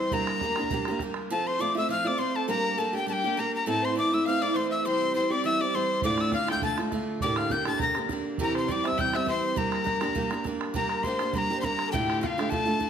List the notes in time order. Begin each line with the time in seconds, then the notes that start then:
Already playing: E3 G3 C4 G4 C5 C6
0.11 G3 A#3 D4 G4 A#4 A#5, bodhran
0.27 bodhran
0.41 G3 A#3 D4, bodhran
0.45 G4
0.56 D4 G4, bodhran
0.61 A#3, bodhran
0.70 G3 A#3 D4 G4, bodhran
0.85 G4, bodhran
0.89 A#3 D4
0.99 G3 A#3 D4, bodhran
1.04 G4
1.14 bodhran
1.30 F3 A3 C4 F4 A4 A5
1.47 C5 C6
1.59 F3 A3 C4 F4 D5 D6
1.75 A3 C4 F4 E5 E6
1.89 F3 A3 C4 F4 F5 F6
2.04 A3 C4 F4 D5 D6
2.18 F3 A3 C4 F4 C5 C6
2.36 A4 A5
2.48 G3 A#3 D4 G4 A#4 A#5
2.78 G3 A#3 D4 G4 A4 A5
2.93 A#3 D4 G4
2.97 G5
3.07 G3 A#3 D4 G4 A5
3.13 G5
3.24 A#3 D4 G4
3.37 G3 A#3 D4 G4 A#4 A#5
3.54 A#4 A#5
3.66 A2 E3 A3 C4 E4 A4 A5
3.82 C5 C6
3.95 E3 A3 C4 E4 D5 D6
4.12 A3 C4 E4 E5 E6
4.25 E3 A3 C4 F5 F6
4.29 E4
4.42 A3 C4 E4 D5 D6
4.54 E3 A3 C4 C5 C6
4.58 E4
4.71 E5 E6
4.84 C3 E3 G3 C4 G4 C5 C6
5.13 E3 G3 C4 G4 C5 C6
5.30 G3 C4 G4 D5 D6
5.44 E3 G3 C4 G4 E5 E6
5.60 G3 C4 G4 D5 D6
5.73 E3 G3 C4 G4 C5 C6
6.01 D2 A2 D3 A3 D4 D5 D6, bodhran
6.06 F4
6.18 E6, bodhran
6.32 D3 A3 D4 F5 F6, bodhran
6.36 F4
6.48 D3 A3 D4 F4 G5 G6, bodhran
6.55 bodhran
6.62 D3 A3 D4 F4 A5 A6, bodhran
6.78 D3 A3 D4 F4, bodhran
6.91 D3 A3 D4 F4, bodhran
7.20 D2 A2 D3 A#3 D4 G4 D5 D6, bodhran
7.36 F5 F6, bodhran
7.50 D3 A#3 D4 G4 G5 G6, bodhran
7.65 A#3 D4 G4 A5 A6, bodhran
7.70 D3, bodhran
7.79 D3 A#3 D4 A#5 A#6, bodhran
7.83 G4
7.95 D3 A#3 D4 G4, bodhran
8.09 D3 A#3 D4 G4, bodhran
8.38 C3 E3 G3 C4 G4 A#4, bodhran
8.43 A#5
8.55 C5 C6, bodhran
8.68 E3 G3 C4 G4 D5, bodhran
8.72 D6
8.84 G3 C4 G4 E5 E6, bodhran
8.92 bodhran
8.97 E3 G3 C4 G4 G5 G6, bodhran
9.13 G3 C4 G4 E5 E6, bodhran
9.26 E3 G3 C4 G4 C5 C6, bodhran
9.56 G3 A#3 D4 G4 A#4 A#5, bodhran
9.72 bodhran
9.84 G3 A#3 D4 G4, bodhran
10.01 A#3 D4 G4, bodhran
10.08 bodhran
10.15 G3 A#3 D4 G4, bodhran
10.30 A#3 D4 G4, bodhran
10.44 G3 A#3 D4 G4, bodhran
10.61 bodhran
10.74 G3 A#3 D4 G4 A#4 A#5, bodhran
10.89 bodhran
11.03 G3 A#3 D4 C5 C6, bodhran
11.08 G4
11.19 A#3 D4 G4, bodhran
11.33 G3 A#3 D4 G4 A#4 C6, bodhran
11.38 A#5
11.50 A#3 D4 G4
11.57 C5 C6
11.63 G3 A#3 D4 G4 A#4 A#5, bodhran
11.79 bodhran
11.87 A4
11.92 D2 A2 D3 A3 D4 F4 G4 G5, bodhran
12.10 bodhran
12.21 D3 A3 D4 F4 G5, bodhran
12.26 F5
12.38 D3 A3 D4 F4 G4, bodhran
12.50 D3 A3 D4 F4 A4 A5, bodhran
12.65 D3 A3 D4 F4
12.80 D3 A3 D4 F4, bodhran